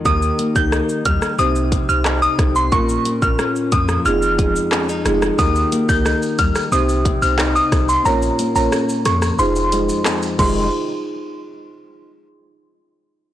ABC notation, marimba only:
X:1
M:4/4
L:1/16
Q:1/4=90
K:Fm
V:1 name="Marimba"
[B,EGB]3 [B,EGB] z4 [CEGc] z2 [CEGc] z2 [CEGc] z | [B,DFB]3 [B,DFB] z4 [CEFA]2 [CEFA] z3 [CEFA] z | [B,EGB]3 [B,EGB] z4 [CEGc] z2 [CEGc] z2 [CEGc] z | [DFBd]3 [DFBd] z4 [EFAc]2 [EFAc] z3 [EFAc]2 |
z16 |]